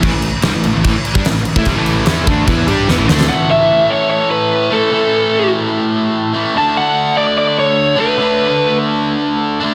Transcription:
<<
  \new Staff \with { instrumentName = "Lead electric guitar" } { \time 4/4 \key d \major \tempo 4 = 147 r1 | r1 | fis''8 e''4 cis''8 cis''8 b'4 a'8~ | a'4. r2 r8 |
a''8 fis''4 d''8 d''8 cis''4 b'8~ | b'4. r2 r8 | }
  \new Staff \with { instrumentName = "Distorted electric guitar" } { \clef bass \time 4/4 \key d \major <a, e>16 <a, e>8 r16 <c g>16 <a, e>16 <a, e>16 <a, e>16 <a, e>16 r8 <g d'>16 <a, e>8 r16 <a e'>16 | <c g>16 <a, e a>8. <e b e'>8 <d a d'>8 <e b e'>8 <g d' g'>8 <e b>16 <a, e>16 <d a d'>8 | <a, e a>2.~ <a, e a>8 <a, e a>8 | <a, e a>2.~ <a, e a>8 <a, e a>8 |
<d a d'>2.~ <d a d'>8 <d a d'>8 | <d a d'>2.~ <d a d'>8 <d a d'>8 | }
  \new Staff \with { instrumentName = "Distorted electric guitar" } { \clef bass \time 4/4 \key d \major <a, e>16 <a, e>8 r16 <c g>16 <a, e>16 <a, e>16 <a, e>16 <a, e>16 r8 <g d'>16 <a, e>8 r16 <a e'>16 | <c g>16 <a, e a>8. <e b e'>8 <d a d'>8 <e b e'>8 <g d' g'>8 <e b>16 <a, e>16 <d a d'>8 | r1 | r1 |
r1 | r1 | }
  \new Staff \with { instrumentName = "Overdriven electric guitar" } { \clef bass \time 4/4 \key d \major <a, e>16 <a, e>8 r16 <c g>16 <a, e>16 <a, e>16 <a, e>16 <a, e>16 r8 <g d'>16 <a, e>8 r16 <a e'>16 | <c g>16 <a, e a>8. <e b e'>8 <d a d'>8 <e b e'>8 <g d' g'>8 <e b>16 <a, e>16 <d a d'>8 | r1 | r1 |
r1 | r1 | }
  \new Staff \with { instrumentName = "Picked electric bass" } { \clef bass \time 4/4 \key d \major a,,16 a,,8 r16 c,16 a,,16 a,,16 a,,16 a,,16 r8 g,16 a,,8 r16 a,16 | c,16 a,,8. e,8 d,8 e,8 g,8 e,16 a,,16 d,8 | r1 | r1 |
r1 | r1 | }
  \new DrumStaff \with { instrumentName = "Drums" } \drummode { \time 4/4 <cymc bd>8 cymc8 <cymc sn>8 cymc8 <cymc bd>8 cymc16 bd16 <cymc sn>16 sn16 cymc16 bd16 | <cymc bd>8 cymc8 <cymc sn>8 <cymc bd>8 <cymc bd>8 cymc8 sn8 sn16 sn16 | r4 r4 r4 r4 | r4 r4 r4 r4 |
r4 r4 r4 r4 | r4 r4 r4 r4 | }
>>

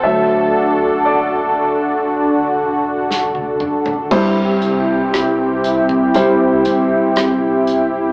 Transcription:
<<
  \new Staff \with { instrumentName = "Analog synth pad" } { \time 4/4 \key c \lydian \tempo 4 = 59 <d d' fis' a'>1 | <c c' e' g'>1 | }
  \new Staff \with { instrumentName = "Grand piano" } { \time 4/4 \key c \lydian e''4 d''4. r4. | <g e' c''>2 <g e' c''>2 | }
  \new Staff \with { instrumentName = "Grand piano" } { \clef bass \time 4/4 \key c \lydian <d fis a>1 | g,4. r2 r8 | }
  \new Staff \with { instrumentName = "Sub bass" } { \clef bass \time 4/4 \key c \lydian d,,8. fis,,8. d,,4 e,,4 g,,8 | c,4. c,4 g,,4 fis,,8 | }
  \new DrumStaff \with { instrumentName = "Drums" } \drummode { \time 4/4 r4 r4 r4 sn16 tommh16 toml16 tomfh16 | <cymc bd>8 hh8 <hh ss>8 hh16 bd16 hh8 <hh bd>8 <hh ss>8 hh8 | }
>>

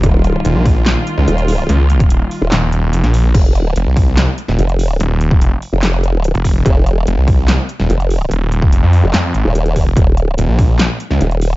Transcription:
<<
  \new Staff \with { instrumentName = "String section" } { \clef bass \time 4/4 \key ees \mixolydian \tempo 4 = 145 <ees g bes f'>1~ | <ees g bes f'>1 | r1 | r1 |
r1 | r1 | r1 | }
  \new Staff \with { instrumentName = "Detuned saw bass" } { \clef bass \time 4/4 \key ees \mixolydian r4 ees,,16 bes,,4 r8 des,16 r4 | des,4 ees,,16 r8. ees,,4 f,,16 bes,,8. | r4 f,,16 c,4 r8 ees,,16 r4 | ees,,4 f,,16 r2 f,,8. |
r4 f,,16 c,4 r8 ees,,16 r4 | ees,,4 f,,16 f,8 r16 f,8 aes,,16 r4 f,,16 | r4 ees,,16 bes,,4 r8 des,16 r4 | }
  \new Staff \with { instrumentName = "Wobble bass" } { \clef bass \time 4/4 \key ees \mixolydian ees,,4 r2 ees,,4 | r4. r16 ees,,16 r2 | f,,4 r2 f,,4 | r4. r16 f,,4. r8. |
f,,4 r2 f,,4 | r4. r16 f,,16 r8. ees,,4 r16 | ees,,4 r2 ees,,4 | }
  \new DrumStaff \with { instrumentName = "Drums" } \drummode { \time 4/4 <hh bd>8 hh8 hh8 <hho bd>8 <hc hh sn>8 hh8 hh16 hh16 hho8 | hh8 hh16 <hh bd>16 hh8 hho8 <hc hh sn>8 hh8 hh16 <hh sn>16 hho8 | <cymc hh bd>8 hh8 hh8 <hho bd>8 <hc hh sn>8 hh16 sn16 hh16 hh16 hho8 | hh8 hh16 bd16 hh8 hho8 <hc hh sn>8 hh8 hh16 hh16 <hho bd>8 |
<hh bd>8 hh8 hh8 <hho bd>8 <hc hh sn>8 hh16 sn16 hh16 hh16 hho8 | hh8 hh16 bd16 hh8 hho8 <hc hh sn>8 hh8 hh16 hh16 <hho bd>8 | <hh bd>8 hh8 hh8 <hho bd>8 <hc hh sn>8 hh16 sn16 hh16 hh16 hho8 | }
>>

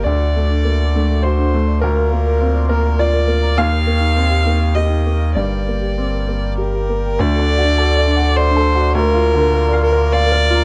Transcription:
<<
  \new Staff \with { instrumentName = "Violin" } { \time 3/4 \key d \phrygian \tempo 4 = 102 d''2 c''4 | bes'4. bes'8 d''4 | f''2 ees''4 | d''2 bes'4 |
d''2 c''4 | bes'4. bes'8 d''4 | }
  \new Staff \with { instrumentName = "Marimba" } { \time 3/4 \key d \phrygian d'16 a'16 a'16 d'16 a'16 fis'16 d'16 a'16 r16 d'16 r16 d''16 | bes'16 f''16 f''16 bes'16 f''16 d''16 bes'16 f''16 f''16 bes'16 r16 bes''16 | ees'16 bes'16 bes'16 ees'16 bes'16 g'16 ees'16 bes'16 bes'16 ees'16 r16 ees''16 | g'16 r16 d''16 g'16 d''16 bes'16 g'16 d''16 d''16 g'16 r16 g''16 |
d'16 a'16 a'16 d'16 a'16 fis'16 d'16 a'16 a'16 d'16 r16 d''16 | bes'16 f''16 f''16 bes'16 f''16 d''16 bes'16 f''16 f''16 bes'16 r16 bes''16 | }
  \new Staff \with { instrumentName = "Harmonium" } { \time 3/4 \key d \phrygian << { d''2.~ | d''2. | ees''2. | d''2. |
d''2.~ | d''2. | } \\ { fis'2. | f'2. | g'2.~ | g'2. |
fis'2. | f'2. | } >> }
  \new Staff \with { instrumentName = "Harmonium" } { \time 3/4 \key d \phrygian a2. | bes2.~ | bes2.~ | bes2. |
a2. | bes2. | }
  \new Staff \with { instrumentName = "Upright piano" } { \time 3/4 \key d \phrygian << { d''2 c''4 | bes'4. bes'8 d''4 | f''2 ees''4 | d''2 r4 |
r2. | r2. | } \\ { d,8 a8 bes8 a8 fis'8 a8 | d,8 bes8 c'8 bes8 f'8 bes8 | ees,8 bes8 c'8 bes8 g'8 bes8 | g,8 bes8 c'8 bes8 g'8 bes8 |
\tuplet 3/2 { d,8 d'8 fis'8 a'8 d''8 fis''8 d''8 a'8 fis'8 } | \tuplet 3/2 { d,8 f'8 d8 bes'8 f''8 bes'8 f''8 bes'8 f'8 } | } >> }
  \new Staff \with { instrumentName = "Sub bass" } { \clef bass \time 3/4 \key d \phrygian d,2.~ | d,2. | ees,2. | g,,2. |
d,2.~ | d,2. | }
>>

